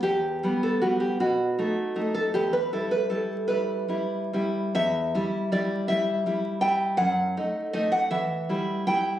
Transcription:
\new Staff \with { instrumentName = "Nylon-string guitar" } { \time 6/8 \key e \minor \tempo 4. = 52 << { g'8. a'16 fis'16 g'16 fis'4~ fis'16 a'16 | g'16 b'16 a'16 b'16 a'8 b'4. | e''4 d''8 e''4 g''8 | fis''4 dis''16 fis''16 e''4 g''8 | } \\ { e,8 <g b>8 <g b>8 b,8 <a dis'>8 <a dis'>8 | e,8 <g e'>8 <g e'>8 <g e'>8 <g e'>8 <g e'>8 | e,8 <g e'>8 <g e'>8 <g e'>8 <g e'>8 <g e'>8 | fis,8 <a dis'>8 <a dis'>8 e8 <g e'>8 <g e'>8 | } >> }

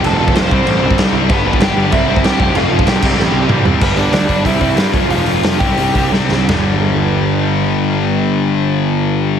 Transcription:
<<
  \new Staff \with { instrumentName = "Lead electric guitar" } { \time 4/4 \key c \major \tempo 4 = 188 <a' a''>4 <c'' c'''>2 r4 | <b b'>8 <b b'>8 <g' g''>4 <e' e''>8 <e' e''>8 <g' g''>8 <g' g''>8 | <f' f''>4 <g' g''>2~ <g' g''>8 r8 | <b b'>8 <d' d''>8 <d' d''>4 <e' e''>4 <f' f''>4 |
<f' f''>4. <g' g''>4. r4 | r1 | r1 | }
  \new Staff \with { instrumentName = "Distorted electric guitar" } { \clef bass \time 4/4 \key c \major <f, c f>8 <f, c f>8 <f, c f>8 <c g c'>8 <c g c'>8 <c g c'>8 <c g c'>8 <c g c'>8 | <g, d g>8 <g, d g>8 <g, d g>8 <g, d g>8 <c g c'>8 <c g c'>8 <c g c'>8 <f, c f>8 | <f, c f>8 <f, c f>8 <f, c f>8 <c g c'>8 <c g c'>8 <c g c'>8 <c g c'>8 <c g c'>8 | <g, d g>8 <g, d g>8 <g, d g>8 <g, d g>8 <c g c'>8 <c g c'>8 <c g c'>8 <f, c f>8 |
<f, c f>8 <f, c f>8 <f, c f>8 <c g c'>8 <c g c'>8 <c g c'>8 <c g c'>8 <c g c'>8 | <g, d g>1~ | <g, d g>1 | }
  \new Staff \with { instrumentName = "Overdriven electric guitar" } { \clef bass \time 4/4 \key c \major <f, c f>8 <f, c f>8 <f, c f>8 <c g c'>8 <c g c'>8 <c g c'>8 <c g c'>8 <c g c'>8 | <g, d g>8 <g, d g>8 <g, d g>8 <g, d g>8 <c g c'>8 <c g c'>8 <c g c'>8 <f, c f>8 | <f, c f>8 <f, c f>8 <f, c f>8 <c g c'>8 <c g c'>8 <c g c'>8 <c g c'>8 <c g c'>8 | <g, d g>8 <g, d g>8 <g, d g>8 <g, d g>8 <c g c'>8 <c g c'>8 <c g c'>8 <f, c f>8 |
<f, c f>8 <f, c f>8 <f, c f>8 <c g c'>8 <c g c'>8 <c g c'>8 <c g c'>8 <c g c'>8 | <g, d g>1~ | <g, d g>1 | }
  \new Staff \with { instrumentName = "Picked electric bass" } { \clef bass \time 4/4 \key c \major f,,8 f,,8 f,,8 c,8 a,,8 c,8 c,8 c,8 | g,,8 g,,8 g,,8 g,,8 c,8 c,8 c,8 f,,8 | f,,8 f,,8 b,,8 c,8 a,,8 c,8 c,8 c,8 | g,,4 d,8 g,,8 c,8 c,8 g,8 f,,8 |
f,,8 f,,8 f,,8 c,8 c,8 c,8 c,8 c,8 | g,,1~ | g,,1 | }
  \new DrumStaff \with { instrumentName = "Drums" } \drummode { \time 4/4 cymc8. bd16 <cymc sn>8 bd8 cymc8. bd16 <cymc sn>4 | <cymc bd>8. bd16 <cymc sn>4 <cymc bd>8. bd16 <cymc sn>8 bd8 | cymc8. bd16 <cymc sn>8 <cymc bd>8 sn4 toml8 tomfh8 | <cymc bd>8 hho8 <hho sn>8 <hho bd>8 <hho bd>8 <hho bd>8 <hho sn>8 <hho bd>8 |
hho8 hho8 <hho sn>8 <hho bd>8 hho8 <hho bd>8 sn8 sn8 | <rb sn tomfh>4 r4 r4 r4 | r4 r4 r4 r4 | }
>>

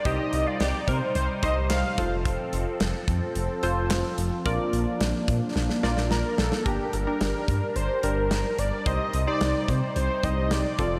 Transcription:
<<
  \new Staff \with { instrumentName = "Analog synth lead" } { \time 4/4 \key c \dorian \tempo 4 = 109 ees''8. d''8. c''8 c''8 ees''8 f''8. r16 | r1 | r2. bes'8 a'8 | g'8 bes'4. c''8 bes'4 d''8 |
ees''8. d''8. c''8 c''8 ees''8 d''4 | }
  \new Staff \with { instrumentName = "Analog polysynth" } { \time 4/4 \key c \dorian <ees' g' c''>4 r4. <ees' g' c''>8. r16 <f' a' c''>8~ | <f' a' c''>4 r4. <f' a' c''>8. r8. | <f' bes' d''>4 r4. <f' bes' d''>8. r8. | <d' g' bes'>8 r16 <d' g' bes'>4 r8. <d' g' bes'>8. r8. |
<ees' g' c''>8 r16 <ees' g' c''>4 r8. <ees' g' c''>8. r16 <c' f' a'>8 | }
  \new Staff \with { instrumentName = "Clean electric guitar" } { \time 4/4 \key c \dorian g'8 r16 f'16 g'8 bes'16 r8. c''8. r8. | r1 | r1 | r1 |
r1 | }
  \new Staff \with { instrumentName = "Analog synth pad" } { \time 4/4 \key c \dorian << { <g ees'>2.~ <g ees'>8 <c' a'>8~ | <c' a'>1 | <bes d'>1 | <d' bes'>1 |
<g ees'>2.~ <g ees'>8 <c' a'>8 | } \\ { c2.~ c8 f8~ | f1~ | f1 | g1 |
c2.~ c8 f8 | } >> }
  \new Staff \with { instrumentName = "Analog synth bass" } { \clef bass \time 4/4 \key c \dorian c,16 r16 c,16 r16 c,16 r16 c16 r16 c,16 r16 c,16 c,16 c,16 r16 f,,8~ | f,,16 r16 f,,16 r16 f,,16 r16 f,16 r16 f,,16 r16 f,,16 f,,16 f,,16 r16 f,,16 r16 | bes,,16 r16 bes,,16 r16 bes,,16 r16 bes,16 r16 bes,,16 r16 bes,,16 bes,,16 bes,,16 r16 bes,,16 r16 | g,,16 r16 g,,16 r16 g,,16 r16 g,16 r16 g,,16 r16 g,,16 g,,16 g,,16 r16 g,,16 r16 |
c,16 r16 c,16 r16 c,16 r16 c16 r16 c,16 r16 c,16 c,16 c,16 r16 f,,8 | }
  \new DrumStaff \with { instrumentName = "Drums" } \drummode { \time 4/4 <hh bd>8 hh8 <hh sn>8 <hh bd>8 hh8 <hh bd>8 <hc hh sn>8 <hh bd>8 | <hh bd>8 hh8 <hh sn>8 <hh bd>8 hh8 hh8 <hc hh sn>8 hh8 | <hh bd>8 hh8 <hh sn>8 <hh bd>8 sn16 sn16 sn16 sn16 sn8 sn16 sn16 | <hh bd>8 hh8 <hh sn>8 <hh bd>8 hh8 hh8 <hh sn>8 hh8 |
<hh bd>8 hh8 <hh sn>8 <hh bd>8 hh8 <hh bd>8 <hh sn>8 <hh bd>8 | }
>>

